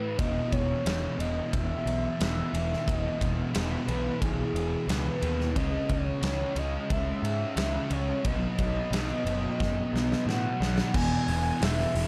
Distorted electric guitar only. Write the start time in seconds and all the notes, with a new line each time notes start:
Already playing: A2 E3 A3
0.17 E2 B2 E3
0.84 E2 B2 E3
1.17 B2 E3
2.17 E2 B2 E3
2.52 B2 E3
2.85 E2 B2 E3
3.52 E2 B2 E3
3.86 B2 E3
4.87 E2 B2 E3
5.21 B2 E3
5.55 C#3 G#3 C#4
6.22 C#3 G#3 C#4
6.56 G#3 C#4
7.56 C#3 G#3 C#4
7.89 G#3 C#4
8.23 B2 F#3 B3
8.91 B2 F#3 B3
9.25 F#3 B3
10.27 B2 F#3 B3
10.60 F#3 B3
10.93 E2 B2 E3
11.28 B2 E3
11.60 E2 B2 E3
11.93 B2 E3